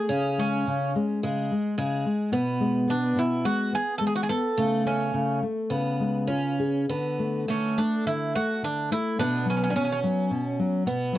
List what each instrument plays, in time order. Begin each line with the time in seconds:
Already playing: twelve-string acoustic guitar A3, bouzouki G#4
0.09 nylon-string guitar C#3, twelve-string acoustic guitar C#4
0.38 nylon-string guitar G#3, bouzouki C#4
0.67 nylon-string guitar C#3
0.95 nylon-string guitar G#3
1.23 nylon-string guitar C#3, twelve-string acoustic guitar G#3
1.52 nylon-string guitar G#3
1.78 nylon-string guitar C#3, twelve-string acoustic guitar G#3
2.05 nylon-string guitar G#3
2.32 nylon-string guitar B2, twelve-string acoustic guitar B3
2.60 nylon-string guitar G#3
2.87 nylon-string guitar B3, bouzouki D4
3.16 nylon-string guitar B2, bouzouki E4
3.45 nylon-string guitar G#3, bouzouki F#4
3.73 nylon-string guitar B3, bouzouki G#4
3.98 nylon-string guitar G#3, bouzouki A4
4.07 bouzouki G#4
4.16 bouzouki F#4
4.23 bouzouki G#4
4.29 nylon-string guitar B3, bouzouki A4
4.58 nylon-string guitar C#3, twelve-string acoustic guitar A3
4.85 nylon-string guitar A3, bouzouki C#4
5.14 nylon-string guitar C#3
5.43 nylon-string guitar A3
5.70 nylon-string guitar C#3, twelve-string acoustic guitar B3
6.00 nylon-string guitar G#3
6.27 twelve-string acoustic guitar C#4, nylon-string guitar F4
6.59 nylon-string guitar G#4
6.89 nylon-string guitar D3, twelve-string acoustic guitar B3
7.19 nylon-string guitar A3
7.48 nylon-string guitar D3, twelve-string acoustic guitar A3, bouzouki C#4
7.78 nylon-string guitar A3, bouzouki D4
8.06 nylon-string guitar D3, bouzouki E4
8.35 nylon-string guitar A3, bouzouki F#4
8.63 nylon-string guitar D3, bouzouki D4
8.91 nylon-string guitar A3, bouzouki E4
9.19 nylon-string guitar B2, twelve-string acoustic guitar B3, bouzouki D4
9.46 nylon-string guitar F#3
9.50 bouzouki C#4
9.57 bouzouki C#4
9.63 bouzouki C#4
9.70 bouzouki C#4, twelve-string acoustic guitar D4
9.76 nylon-string guitar B2, bouzouki C#4, twelve-string acoustic guitar C#4
9.85 bouzouki C#4
9.92 bouzouki C#4
10.03 nylon-string guitar F#3
10.31 nylon-string guitar B2
10.59 nylon-string guitar F#3
10.86 nylon-string guitar B2, twelve-string acoustic guitar B3
11.13 nylon-string guitar F#3